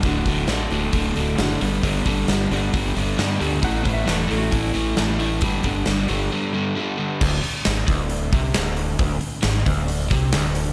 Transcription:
<<
  \new Staff \with { instrumentName = "Electric slide guitar" } { \time 4/4 \key d \major \tempo 4 = 134 r1 | r1 | \tuplet 3/2 { fis''4 e''8 b'8 a'8 fis'8 } e'2 | r1 |
r1 | r1 | }
  \new Staff \with { instrumentName = "Steel-string acoustic guitar" } { \time 4/4 \key d \major <d d' fis' a'>8 <d' fis' a'>8 <d d' fis' a'>8 <d' fis' a'>4 <d' fis' a'>8 <d d' fis' a'>8 <g b d' a'>8~ | <g b d' a'>8 <b d' a'>8 <g b d' a'>8 <b d' a'>4 <b d' a'>8 <g b d' a'>4 | <a, a cis' e' a'>8 <cis' e' a'>8 <a cis' e' a'>8 <cis' e' a'>4 <cis' e' a'>8 <a cis' e' a'>4 | <g b d' a'>8 <b d' a'>8 <g b d' a'>8 <b d' a'>4 <b d' a'>8 <g b d' a'>4 |
r1 | r1 | }
  \new Staff \with { instrumentName = "Overdriven electric guitar" } { \clef bass \time 4/4 \key d \major <d, a, d>8 <d, a, d>8 <d, a, d>8 <d, a, d>8 <d, a, d>8 <d, a, d>8 <d, a, d>8 <g, d g>8 | <g, d g>8 <g, d g>8 <g, d g>8 <g, d g>8 <g, d g>8 <g, d g>8 <g, d g>8 <g, d g>8 | <a, e a>8 <a, e a>8 <a, e a>8 <a, e a>8 <a, e a>8 <a, e a>8 <a, e a>8 <a, e a>8 | <g, d g>8 <g, d g>8 <g, d g>8 <g, d g>8 <g, d g>8 <g, d g>8 <g, d g>8 <g, d g>8 |
d,8 r8 aes,8 d,4 c8 d,4 | d,8 r8 aes,8 d,4 c8 d,4 | }
  \new Staff \with { instrumentName = "Fingered electric bass" } { \clef bass \time 4/4 \key d \major d,,8 d,,8 a,,8 d,,8 d,,8 d,,8 fis,,8 g,,8 | g,,8 g,,8 g,,8 g,,8 g,,8 g,,8 g,8 d,8 | a,,8 a,,8 e,,8 a,,8 a,,8 a,,8 a,,4 | g,,8 g,,8 g,,8 g,,8 r2 |
d,,8 r8 aes,,8 d,,4 c,8 d,,4 | d,,8 r8 aes,,8 d,,4 c,8 d,,4 | }
  \new DrumStaff \with { instrumentName = "Drums" } \drummode { \time 4/4 <hho bd>8 <hho bd>8 <hho sn>8 hho8 <hho bd>8 hho8 <hho sn>8 hho8 | <hho bd>8 <hho bd>8 <hho sn>8 hho8 <hho bd>8 hho8 <hho sn>8 hho8 | <hho bd>8 <hho bd>8 <hho sn>8 hho8 <hho bd>8 hho8 <hho sn>8 hho8 | <hho bd>8 <hho bd>8 <hho sn>8 hho8 r4 r4 |
<cymc bd>8 hho8 <hho sn>8 <hho bd>8 hho8 <hho bd>8 <hho sn>8 hho8 | <hho bd>8 hho8 <hho sn>8 <hho bd>8 hho8 <hho bd sn>8 <hho sn>8 hho8 | }
>>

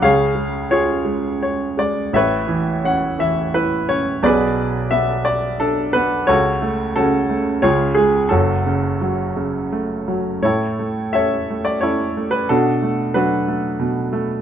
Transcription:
<<
  \new Staff \with { instrumentName = "Grand piano" } { \time 3/4 \key fis \minor \tempo 4 = 88 << { eis''4 cis''4 cis''8 d''8 | e''4 fis''8 e''8 b'8 cis''8 | d''4 e''8 d''8 a'8 b'8 | cis''4 a'4 cis''8 gis'8 |
a'2 r4 | \key a \major cis''4 e''8. d''16 cis''8. b'16 | a'4 b'4. r8 | } \\ { <gis' cis''>4 gis'4. r8 | <b' cis''>4. r4. | <gis' b'>4. r4. | <fis' a'>4 <cis' fis'>4 <eis' gis'>4 |
<cis' fis'>2 r4 | <e' a'>4 <a' cis''>4 <e' a'>4 | <d' fis'>4 <d' fis'>4. r8 | } >> }
  \new Staff \with { instrumentName = "Grand piano" } { \clef bass \time 3/4 \key fis \minor <cis, cis>8 gis8 eis'8 gis4 gis8 | <a,, a,>8 e8 cis'8 e8 e'8 cis'8 | <b,, b,>4 b4 d'8 b8 | <cis, cis>8 a8 cis8 a8 <cis, cis>8 gis8 |
<fis,, fis,>8 cis8 fis8 cis8 a8 fis8 | \key a \major a,8 a8 cis'8 a8 cis'8 a8 | b,8 a8 fis8 a8 b,8 a8 | }
>>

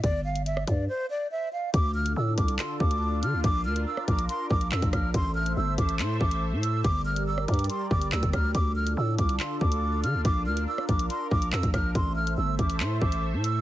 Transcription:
<<
  \new Staff \with { instrumentName = "Flute" } { \time 4/4 \key d \minor \tempo 4 = 141 d''8 f''8 e''8 d''8 c''8 d''8 e''8 f''8 | d'''8 f'''8 e'''8 d'''8 c'''8 d'''4 f'''8 | d'''8 f'''8 e'''8 d'''8 c'''8 d'''8 e'''8 f'''8 | c'''8 f'''8 e'''8 d'''8 c'''8 d'''4 e'''8 |
d'''8 f'''8 e'''8 d'''8 c'''8 d'''8 e'''8 f'''8 | d'''8 f'''8 e'''8 d'''8 c'''8 d'''4 f'''8 | d'''8 f'''8 e'''8 d'''8 c'''8 d'''8 e'''8 f'''8 | c'''8 f'''8 e'''8 d'''8 c'''8 d'''4 e'''8 | }
  \new Staff \with { instrumentName = "Analog synth pad" } { \time 4/4 \key d \minor << { r1 | <d' f'>1~ | <d' f'>1 | <a' c''>1 |
<g' bes'>1 | <d' f'>1~ | <d' f'>1 | <a' c''>1 | } \\ { r1 | <d a'>1 | bes'1 | <a e''>1 |
<g d''>1 | <d a'>1 | bes'1 | <a e''>1 | } >> }
  \new Staff \with { instrumentName = "808-style bass" } { \clef bass \time 4/4 \key d \minor g,,4. g,8 r2 | d,4 a,8 c,8 r8 d,4 d16 d,16 | bes,,8 d,8 r8 bes,,8 r8 bes,,8 f,16 bes,,16 bes,,8 | a,,4 g,,8 a,,8 a,8 a,,8. a,8. |
g,,4. g,8 r8 g,,8 d,16 g,,16 d,8 | d,4 a,8 c,8 r8 d,4 d16 d,16 | bes,,8 d,8 r8 bes,,8 r8 bes,,8 f,16 bes,,16 bes,,8 | a,,4 g,,8 a,,8 a,8 a,,8. a,8. | }
  \new DrumStaff \with { instrumentName = "Drums" } \drummode { \time 4/4 <hh bd>8. hh16 hh16 ss16 <hh bd>8 r4 r4 | <hh bd>8. hh16 r8 <hh bd>16 hh16 <hc hh>8 bd16 hh16 r8 hh8 | <hh bd>8. hh16 r16 ss16 <hh bd>16 hh16 hh8 bd16 hh16 hc16 <hh bd>16 <hh bd ss>8 | <hh bd>8. hh16 r8 <hh bd>16 hh16 <hc hh>8 bd16 hh16 r8 hh8 |
<hh bd>8. hh16 r16 ss16 <hh bd>32 hh32 hh32 hh32 hh8 bd16 hh16 hc16 <hh bd>16 <hh bd ss>8 | <hh bd>8. hh16 r8 <hh bd>16 hh16 <hc hh>8 bd16 hh16 r8 hh8 | <hh bd>8. hh16 r16 ss16 <hh bd>16 hh16 hh8 bd16 hh16 hc16 <hh bd>16 <hh bd ss>8 | <hh bd>8. hh16 r8 <hh bd>16 hh16 <hc hh>8 bd16 hh16 r8 hh8 | }
>>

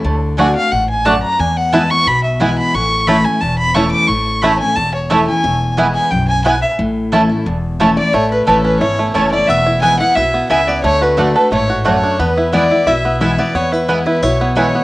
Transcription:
<<
  \new Staff \with { instrumentName = "Fiddle" } { \time 4/4 \key a \major \tempo 4 = 178 r4 gis''8 f''8 fis''8 gis''8 a''8 bes''8 | gis''8 fis''8 a''8 cis'''8 b''8 e''8 gis''8 b''8 | cis'''4 b''8 gis''8 a''8 b''8 cis'''8 d'''8 | cis'''4 b''8 gis''8 a''8 cis''8 e''8 gis''8~ |
gis''4 r8 gis''8 g''8 gis''8 gis''8 e''8 | r2. r8 d''8 | cis''8 b'8 b'8 b'8 cis''4 cis''8 d''8 | e''4 gis''8 fis''8 e''4 e''8 d''8 |
cis''8 b'4 b'8 cis''4 cis''4 | b'4 d''4 e''4 e''8 d''8 | cis''8 b'4 b'8 cis''4 cis''4 | }
  \new Staff \with { instrumentName = "Resonator guitar played with a steel bar" } { \time 4/4 \key a \major r1 | r1 | r1 | r1 |
r1 | r2. r8 d''8 | cis''8 b'8 b'8 b'8 cis''4 cis''8 d''8 | e''4 gis''8 fis''8 e''4 e''8 d''8 |
cis''8 b'4 b'8 cis''4 cis''4 | b'4 d''4 e''4 e''8 d''8 | cis''8 b'4 b'8 cis''4 cis''4 | }
  \new Staff \with { instrumentName = "Mandolin" } { \time 4/4 \key a \major r4 <a fis' d'' fis''>16 r4. r16 <a fis' d'' fis''>16 r8. | r4 <b e' b' gis''>16 r4. r16 <b e' b' gis''>16 r8. | r4 <a e' cis'' a''>16 r4. r16 <a e' cis'' a''>16 r8. | r4 <a e' cis'' a''>16 r4. r16 <a e' cis'' a''>16 r8. |
r4 <b e' b' gis''>16 r4. r16 <b e' b' gis''>16 r8. | r4 <a e' cis'' a''>16 r4. r16 <a e' cis'' a''>16 r8. | r4 <a e' cis'' a''>16 r4. r16 <a e' cis'' a''>16 r8. | r4 <b e' b' gis''>16 r4. r16 <b e' b' gis''>16 r8. |
r4 <a fis' d'' fis''>16 r4. r16 <a fis' d'' fis''>16 r8. | r4 <b e' b' gis''>16 r4. r16 <b e' b' gis''>16 r8. | r4 <b e' b' gis''>16 r4. r16 <b e' b' gis''>16 r8. | }
  \new Staff \with { instrumentName = "Five-string banjo" } { \time 4/4 \key a \major r4 <a d' fis'>8 r4. <a d' fis'>8 r8 | r4 <b e'>8 r4. <b e'>8 r8 | r4 <a cis' e'>8 r4. <a cis' e'>8 r8 | r4 <a cis' e'>8 r4. <a cis' e'>8 r8 |
r4 <b e'>8 r4. <b e'>8 r8 | r4 <a cis' e'>8 r4. <a cis' e'>8 r8 | a4 a'8 cis'8 e'8 a8 cis'8 e'8 | b8 e'8 b8 e'8 e'8 b8 e'8 b8 |
a8 fis'8 a8 a'8 a8 fis'8 a8 d'8 | b8 e'8 b8 e'8 e'8 b8 e'8 b8 | b8 e'8 b8 e'8 e'8 b8 e'8 b8 | }
  \new Staff \with { instrumentName = "Steel-string acoustic guitar" } { \time 4/4 \key a \major << { r4 <d a d' fis'>8 <d' fis'>8 r2 | r4 <e gis b e'>8 <b e'>8 r4 <e gis b e'>4 | r4 <e a cis' e'>8 <cis' e'>8 r4 <e a cis' e'>4 | r4 <e a cis' e'>8 <cis' e'>8 r4 <e a cis' e'>8 <cis' e'>8 |
r4 <e gis b e'>4 r2 | r4 <e a cis' e'>8 <cis' e'>8 r4 <e a cis' e'>8 <cis' e'>8 | r4 <e a cis' e'>4 r4 <e a cis' e'>8 <cis' e'>8 | r4 <e gis b e'>8 <b e'>8 r2 |
r4 <d a d' fis'>8 <d' fis'>8 r2 | r4 <e gis b e'>8 <b e'>8 r4 <e gis b e'>8 <b e'>8 | r4 <e gis b e'>4 r4 <e gis b e'>4 | } \\ { d2 gis,4 fis,4 | e,2 b,2 | a,2 e,2 | a,2 e,2 |
e,2 fis,4 gis,4 | a,2 e,2 | a,2 e,2 | e,2 b,4 cis4 |
d2 gis,4 fis,4 | e,2 b,2 | e,2 b,2 | } >> }
  \new Staff \with { instrumentName = "Upright bass" } { \clef bass \time 4/4 \key a \major d,2 a,,2 | e,2 b,,2 | a,,2 e,,2 | a,,2 e,,2 |
e,,2 b,,2 | a,,2 e,,2 | a,,4 a,,4 gis,,4 fis,,4 | e,,2 b,,4 cis,4 |
d,2 a,,2 | e,2 b,,2 | e,2 b,,2 | }
>>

